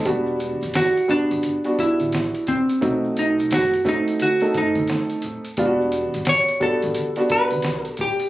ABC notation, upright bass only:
X:1
M:4/4
L:1/16
Q:"Swing 16ths" 1/4=87
K:Bm
V:1 name="Upright bass" clef=bass
E,,,3 F,,, z3 G,,, z3 A,,,2 z3 | B,,,4 F,,,2 z4 F,,2 z4 | E,,,3 G,,, z3 A,,, z3 B,,,2 z3 |]